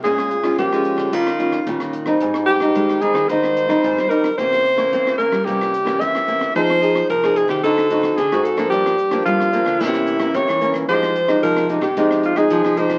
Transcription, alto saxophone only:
X:1
M:4/4
L:1/16
Q:1/4=111
K:Fm
V:1 name="Alto saxophone"
A4 G4 F4 z4 | z2 G4 A2 c6 B2 | c6 B2 G4 =e4 | c4 B2 A G =A4 _A2 =A2 |
G4 F4 =E4 d4 | c4 B2 z G3 F A3 c2 |]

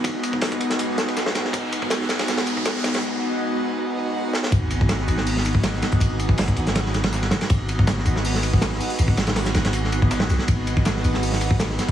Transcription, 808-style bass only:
X:1
M:4/4
L:1/8
Q:1/4=161
K:G#m
V:1 name="808-style bass" clef=bass
z8 | z8 | z8 | G,,,3 G,,,4 z |
G,,,3 G,,,4 z | G,,,3 G,,,4 z | G,,,3 G,,,4 B,,, | G,,,3 G,,,4 z |]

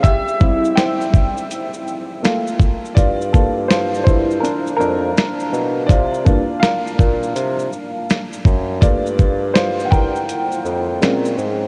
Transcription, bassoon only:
X:1
M:4/4
L:1/16
Q:"Swing 16ths" 1/4=82
K:Gdor
V:1 name="Bassoon" clef=bass
z16 | G,,6 G,,2 z2 F,,2 z2 =B,,2 | C,2 G,, z3 B,,2 C,2 z4 ^F,,2 | G,,6 G,,2 z2 F,,2 B,,2 _A,,2 |]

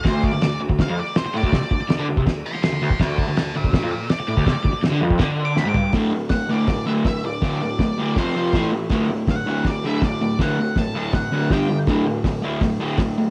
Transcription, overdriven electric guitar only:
X:1
M:4/4
L:1/16
Q:1/4=162
K:Dmix
V:1 name="Overdriven electric guitar" clef=bass
D,,3 D,, D,,2 D,, D,, D,, =F,, z4 A,, D,, | C, z D,, z D,, D, D,, C, D,,2 z2 D,, D,, D,, z | D,,3 D,, D,,2 D,, D,, D,, =F,, z4 A,, D,, | C, z D,, z D,, D, =F,,2 D,4 D,, ^G,, =G,,2 |
[D,,A,,D,]2 [D,,A,,]2 [D,,A,,]2 [D,,A,,D,]2 [D,,A,,]2 [D,,A,,D,]2 [D,,A,,]2 [D,,A,,]2 | [D,,A,,D,]2 [D,,A,,]2 [D,,A,,]2 [D,,A,,D,]2 [=F,,C,=F,]2 [F,,C,F,]2 [A,,E,A,]2 [A,,E,]2 | [D,,A,,D,]2 [D,,A,,]2 [D,,A,,]2 [D,,A,,D,]2 [D,,A,,]2 [D,,A,,D,]2 [D,,A,,]2 [D,,A,,]2 | [D,,A,,D,]2 [D,,A,,]2 [D,,A,,]2 [D,,A,,D,]2 [D,,A,,]2 [D,,A,,D,]2 [G,,D,G,]2 [G,,D,]2 |
[D,,A,,D,]2 [D,,A,,]2 [D,,A,,]2 [D,,A,,D,]2 [D,,A,,]2 [D,,A,,D,]2 [D,,A,,]2 [D,,A,,]2 |]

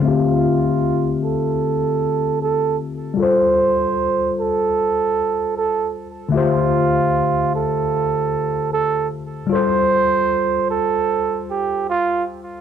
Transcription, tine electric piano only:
X:1
M:4/4
L:1/8
Q:"Swing 16ths" 1/4=76
K:Dm
V:1 name="Tine electric piano"
[D,A,CFGe]8 | [G,FAc]8 | [D,A,FGce]8 | [G,FAc]8 |]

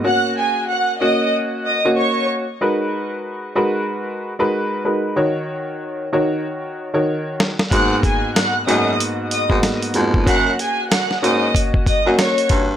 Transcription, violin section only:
X:1
M:4/4
L:1/16
Q:"Swing 16ths" 1/4=94
K:G#m
V:1 name="Violin section"
[ff']2 [Gg]2 [ff']2 [dd']2 z2 [dd'] z [cc']2 z2 | z16 | z16 | [ff']2 [Gg]2 [ff']2 [dd']2 z2 [dd'] z4 z |
[ff']2 [Gg]2 [ff']2 [dd']2 z2 [dd'] z [cc']2 z2 |]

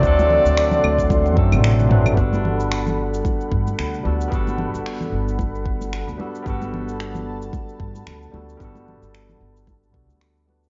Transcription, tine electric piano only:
X:1
M:4/4
L:1/8
Q:"Swing 16ths" 1/4=112
K:G
V:1 name="Tine electric piano"
[F,A,CDA]4- [F,A,CDA] [F,A,CDA]2 [F,A,CDB] | [G,B,DFA]6- [G,B,DFA] [G,B,DFA] | [G,B,DFA]6- [G,B,DFA] [G,B,DFA] | [G,B,DFA]6- [G,B,DFA] [G,B,DFA] |
[G,B,DFA]4- [G,B,DFA] [G,B,DFA]2 [G,B,DFB] |]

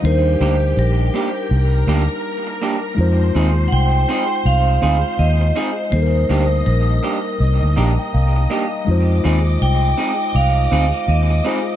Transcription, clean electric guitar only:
X:1
M:4/4
L:1/8
Q:"Swing 16ths" 1/4=82
K:Eb
V:1 name="Clean electric guitar"
z [B,DG] z [B,DG] z [B,DG] z [B,DG] | z [CEA] z [CEA] z [CEA] z [CEA] | z [B,DG] z [B,DG] z [B,DG] z [B,DG] | z [CEA] z [CEA] z [CEA] z [CEA] |]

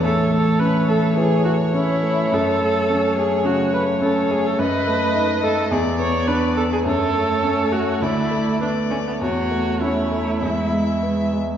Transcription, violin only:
X:1
M:4/4
L:1/8
Q:1/4=104
K:Alyd
V:1 name="Violin"
c8- | [K:F#m] c8 | ^d4 =d4 | c4 d2 d2 |
c2 c2 e3 z |]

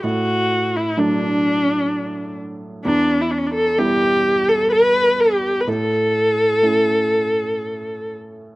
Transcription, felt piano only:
X:1
M:3/4
L:1/8
Q:1/4=64
K:Amix
V:1 name="Felt piano"
A,,2 [F,A,D]4 | E,,2 [G,B,E]4 | A,,2 [A,CE]4 |]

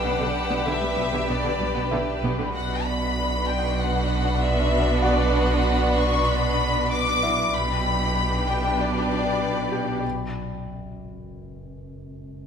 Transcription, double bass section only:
X:1
M:4/4
L:1/16
Q:1/4=96
K:Glyd
V:1 name="Double bass section" clef=bass
B,,, z3 B,,, z B,,, z B,,, z B,,, z B,,, z B,,, z | B,,,16- | B,,,16 | B,,,16 |
z16 |]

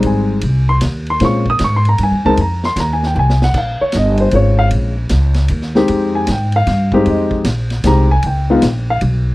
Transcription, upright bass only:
X:1
M:3/4
L:1/8
Q:"Swing" 1/4=154
K:Fm
V:1 name="Upright bass" clef=bass
A,,,2 C,,2 E,,2 | B,,2 A,,2 (3G,, F,, D,, | F,,2 E,,2 C,,2 | B,,, z G,,,2 A,,,2 |
B,,,2 D,,2 E,,2 | F,,2 A,,2 G,,2 | F,,2 B,,,2 C,,2 | D,,2 B,,,2 _C,,2 |]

